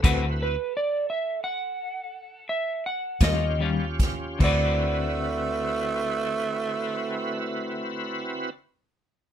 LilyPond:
<<
  \new Staff \with { instrumentName = "Electric slide guitar" } { \time 12/8 \key d \mixolydian \tempo 4. = 48 << { r8 b'8 d''8 e''8 fis''4. e''8 fis''8 ees''8 r4 | r1. | } \\ { a'1~ a'4 r4 | d''1. | } >> }
  \new Staff \with { instrumentName = "Tonewheel organ" } { \time 12/8 \key d \mixolydian <c' e' fis' b'>4 r2. r8 <des' f' g'>4. | <c' e' fis' b'>1. | }
  \new Staff \with { instrumentName = "Clean electric guitar" } { \time 12/8 \key d \mixolydian <d c' fis' b'>8 r1 <g des' f'>8 <ees g des' f'>8 r8 | <d c' fis' b'>1. | }
  \new Staff \with { instrumentName = "Tenor saxophone" } { \time 12/8 \key d \mixolydian r1. | a1. | }
  \new Staff \with { instrumentName = "Fingered electric bass" } { \clef bass \time 12/8 \key d \mixolydian d,4 r2. r8 ees,4. | d,1. | }
  \new DrumStaff \with { instrumentName = "Drums" } \drummode { \time 12/8 <cymc hh bd>4. r4. r4. <hh bd sn>4 <hh bd sn>8 | <cymc bd>4. r4. r4. r4. | }
>>